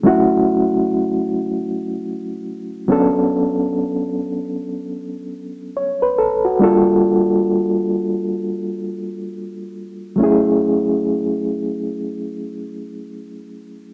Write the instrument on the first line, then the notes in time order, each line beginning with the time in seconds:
reed electric piano
0.03 F#3 A3 C#4 E4 F#4
2.88 F#3 B3 C#4 D4 A4
5.77 C#5
6.02 B4
6.18 A4
6.45 F#4
6.59 G3 A#3 D4 F4
6.63 A4
10.16 F#3 A3 C#4
10.22 E4 G#4